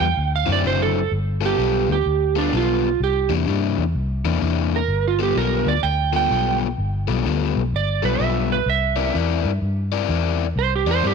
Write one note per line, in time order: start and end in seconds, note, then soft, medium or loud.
0.00 0.15 E2 medium
0.00 0.33 G5 loud
0.17 0.45 D2 medium
0.36 0.49 F5 loud
0.46 0.63 F#2 loud
0.46 0.62 D3 medium
0.46 0.62 F#3 medium
0.46 0.62 C4 medium
0.46 0.63 E4 loud
0.52 0.66 D5 medium
0.63 1.08 F#1 medium
0.63 0.99 D3 medium
0.63 0.99 F#3 medium
0.63 0.99 C4 medium
0.63 0.99 E4 medium
0.67 0.81 C5 loud
0.82 1.11 A4 loud
1.12 1.55 G1 medium
1.41 1.56 G3 medium
1.41 1.57 B3 medium
1.41 1.57 F4 medium
1.41 1.58 A4 medium
1.46 1.89 G4 loud
1.57 1.86 B1 medium
1.57 1.93 G3 medium
1.57 1.94 B3 medium
1.57 1.94 F4 medium
1.57 1.94 A4 medium
1.88 2.04 D2 medium
1.88 2.36 G4 loud
2.06 2.49 D2 medium
2.36 2.50 G3 medium
2.36 2.51 B3 medium
2.36 2.54 D4 medium
2.36 2.51 F4 loud
2.36 2.52 A4 loud
2.52 2.96 B1 medium
2.52 2.88 G3 medium
2.52 2.88 B3 medium
2.52 2.88 F4 medium
2.52 2.88 A4 medium
2.57 3.01 F4 medium
3.00 3.28 C2 medium
3.00 3.31 G4 loud
3.29 3.45 E2 medium
3.29 3.45 C3 medium
3.29 3.46 A#3 medium
3.29 3.46 D4 medium
3.29 3.46 E4 medium
3.46 3.75 G2 medium
3.46 3.82 C3 medium
3.46 3.83 A#3 medium
3.46 3.83 D4 medium
3.46 3.83 E4 medium
3.78 3.93 E2 loud
3.95 4.23 C2 medium
4.25 4.41 E2 medium
4.25 4.40 C3 medium
4.25 4.40 A#3 medium
4.25 4.41 D4 medium
4.25 4.42 E4 loud
4.42 4.85 E2 medium
4.42 4.77 C3 medium
4.42 4.77 A#3 medium
4.42 4.78 D4 medium
4.42 4.78 E4 medium
4.76 5.05 A#4 loud
4.88 5.32 G1 medium
5.08 5.22 F4 medium
5.19 5.35 G3 medium
5.19 5.35 B3 medium
5.19 5.36 F4 medium
5.19 5.37 G4 medium
5.19 5.36 A4 loud
5.35 5.64 B1 medium
5.35 5.72 G3 medium
5.35 5.72 B3 medium
5.35 5.72 F4 medium
5.35 5.73 A4 medium
5.35 5.68 A#4 medium
5.66 5.82 D2 loud
5.66 5.83 D5 loud
5.83 6.27 D2 medium
5.83 6.14 G5 medium
6.13 6.29 G3 medium
6.13 6.29 B3 medium
6.13 6.30 F4 loud
6.13 6.30 A4 loud
6.13 6.62 G5 loud
6.30 6.74 B1 medium
6.30 6.66 G3 medium
6.30 6.66 B3 medium
6.30 6.66 F4 medium
6.30 6.67 A4 medium
6.78 7.06 G1 medium
7.08 7.24 B1 medium
7.08 7.24 G3 medium
7.08 7.24 B3 medium
7.08 7.25 F4 medium
7.08 7.25 A4 medium
7.25 7.53 D2 medium
7.25 7.61 G3 medium
7.25 7.61 B3 medium
7.25 7.61 F4 medium
7.25 7.61 A4 medium
7.56 7.72 B1 medium
7.72 8.00 G1 medium
7.72 8.04 D5 medium
8.03 8.19 B1 medium
8.03 8.18 G3 medium
8.03 8.19 B3 medium
8.03 8.20 F4 medium
8.03 8.19 A4 medium
8.03 8.22 B4 medium
8.20 8.63 B1 medium
8.20 8.55 G3 medium
8.20 8.55 B3 medium
8.20 8.56 F4 medium
8.20 8.56 A4 medium
8.20 8.51 E5 loud
8.52 8.68 B4 medium
8.66 9.10 C2 medium
8.66 9.14 E5 loud
8.96 9.12 C4 medium
8.96 9.13 E4 medium
8.96 9.14 A#4 medium
8.96 9.14 D5 medium
9.14 9.43 E2 medium
9.14 9.50 C4 medium
9.14 9.50 E4 medium
9.14 9.50 A#4 medium
9.14 9.50 D5 medium
9.44 9.60 G2 medium
9.62 10.05 G2 medium
9.92 10.08 C4 medium
9.92 10.08 E4 medium
9.92 10.09 A#4 medium
9.92 10.09 D5 loud
10.09 10.52 E2 medium
10.09 10.45 C4 medium
10.09 10.45 E4 medium
10.09 10.45 A#4 medium
10.09 10.45 D5 medium
10.56 10.84 C2 medium
10.56 10.73 C5 loud
10.76 10.89 G4 medium
10.86 11.02 E2 medium
10.86 11.02 C4 medium
10.86 11.03 E4 medium
10.86 11.04 A#4 medium
10.86 11.03 D5 loud
10.91 11.05 C5 loud
11.03 11.14 G2 medium
11.03 11.14 C4 medium
11.03 11.14 E4 medium
11.03 11.14 A#4 medium
11.03 11.14 D5 medium
11.07 11.14 G4 medium